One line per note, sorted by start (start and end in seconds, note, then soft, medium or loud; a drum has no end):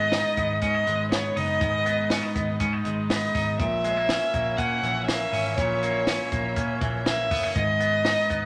0.00 0.22 G#1 loud
0.00 1.60 G#2 medium
0.00 3.55 G#3 medium
0.00 0.36 B3 medium
0.00 3.55 B3 medium
0.00 3.55 D#4 medium
0.00 3.55 B4 medium
0.00 0.62 D#5 loud
0.00 3.55 D#5 medium
0.12 0.62 D#4 medium
0.12 snare loud
0.12 hi-hat pedal medium
0.12 open hi-hat medium
0.37 0.58 G#1 medium
0.37 1.10 B3 medium
0.37 kick medium
0.37 hi-hat pedal medium
0.37 open hi-hat medium
0.61 0.83 G#2 loud
0.61 0.75 C#4 medium
0.61 1.08 D#5 medium
0.61 kick medium
0.61 hi-hat pedal medium
0.61 open hi-hat medium
0.75 1.35 D#4 medium
0.87 1.29 G#1 medium
0.87 2.84 G#3 medium
0.87 hi-hat pedal medium
0.87 open hi-hat medium
1.11 1.85 B3 medium
1.11 1.38 C#5 medium
1.11 snare loud
1.11 hi-hat pedal medium
1.11 open hi-hat medium
1.36 1.58 F#1 medium
1.36 2.11 D#4 medium
1.36 2.36 D#5 loud
1.36 hi-hat pedal medium
1.36 open hi-hat medium
1.61 2.20 G#1 loud
1.61 3.59 G#2 medium
1.61 kick loud
1.61 hi-hat pedal medium
1.61 open hi-hat medium
1.86 2.34 B3 medium
1.86 hi-hat pedal medium
1.86 open hi-hat medium
2.10 2.23 C#4 medium
2.10 snare loud
2.10 hi-hat pedal medium
2.10 open hi-hat medium
2.23 2.60 D#4 medium
2.35 2.62 G#1 medium
2.35 3.09 B3 medium
2.35 kick loud
2.35 hi-hat pedal medium
2.35 open hi-hat medium
2.60 2.81 G#2 medium
2.60 2.73 C#4 medium
2.60 kick medium
2.60 hi-hat pedal medium
2.60 open hi-hat loud
2.73 3.33 D#4 medium
2.85 3.27 G#1 medium
2.85 3.64 G#3 medium
2.85 hi-hat pedal medium
2.85 open hi-hat medium
3.10 3.64 B3 medium
3.10 3.56 D#5 medium
3.10 snare loud
3.10 hi-hat pedal medium
3.10 open hi-hat medium
3.35 3.56 G#1 medium
3.35 3.64 D#4 medium
3.35 kick loud
3.35 hi-hat pedal medium
3.35 open hi-hat medium
3.59 4.18 A#1 loud
3.59 5.56 A#2 medium
3.59 7.52 A#3 medium
3.59 7.52 C#4 medium
3.59 7.52 E4 medium
3.59 7.52 C#5 medium
3.59 4.58 E5 loud
3.59 7.52 E5 medium
3.59 kick loud
3.59 hi-hat pedal medium
3.59 open hi-hat loud
3.84 3.97 G#3 medium
3.84 hi-hat pedal medium
3.84 open hi-hat medium
3.97 4.33 A#3 medium
4.09 4.58 C#4 medium
4.09 snare loud
4.09 hi-hat pedal medium
4.09 open hi-hat medium
4.34 4.55 A#1 medium
4.34 5.07 A#3 medium
4.34 kick medium
4.34 hi-hat pedal medium
4.34 open hi-hat medium
4.57 4.79 A#2 medium
4.57 5.32 C#4 medium
4.57 5.06 F#5 loud
4.57 kick medium
4.57 hi-hat pedal medium
4.57 open hi-hat loud
4.83 5.25 A#1 medium
4.83 6.80 E3 medium
4.83 hi-hat pedal medium
4.83 open hi-hat medium
5.07 5.81 A#3 medium
5.07 5.53 E5 loud
5.07 snare loud
5.07 hi-hat pedal medium
5.07 open hi-hat medium
5.33 5.54 G#1 loud
5.33 6.06 C#4 medium
5.33 hi-hat pedal medium
5.33 open hi-hat medium
5.57 6.17 A#1 loud
5.57 7.56 A#2 medium
5.57 6.53 C#5 medium
5.57 kick loud
5.57 hi-hat pedal medium
5.57 open hi-hat medium
5.83 6.31 A#3 medium
5.83 hi-hat pedal medium
5.83 open hi-hat medium
6.07 6.55 C#4 medium
6.07 snare loud
6.07 hi-hat pedal medium
6.07 open hi-hat medium
6.32 6.53 A#1 medium
6.32 7.05 A#3 medium
6.32 kick loud
6.32 hi-hat pedal medium
6.32 open hi-hat medium
6.56 6.78 A#2 medium
6.56 7.31 C#4 medium
6.56 kick medium
6.56 hi-hat pedal medium
6.56 open hi-hat medium
6.81 7.31 A#1 medium
6.81 7.61 E3 medium
6.81 kick medium
6.81 hi-hat pedal medium
6.81 open hi-hat medium
7.06 7.61 A#3 medium
7.06 7.53 E5 loud
7.06 snare loud
7.06 hi-hat pedal medium
7.06 open hi-hat medium
7.31 7.52 F#1 medium
7.31 7.43 B3 medium
7.31 kick loud
7.31 hi-hat pedal medium
7.31 open hi-hat medium
7.43 7.61 C#4 medium
7.55 8.15 G#1 loud
7.55 8.45 G#2 medium
7.55 8.45 G#3 medium
7.55 8.45 B3 medium
7.55 8.45 D#4 medium
7.55 8.45 B4 medium
7.55 8.45 D#5 loud
7.55 8.45 D#5 medium
7.55 kick loud
7.55 hi-hat pedal medium
7.55 open hi-hat medium
7.80 8.28 B3 medium
7.80 hi-hat pedal medium
7.80 open hi-hat medium
8.05 8.45 D#4 medium
8.05 snare loud
8.05 hi-hat pedal medium
8.05 open hi-hat medium
8.30 8.45 G#1 medium
8.30 8.45 B3 medium
8.30 kick medium
8.30 hi-hat pedal medium
8.30 open hi-hat medium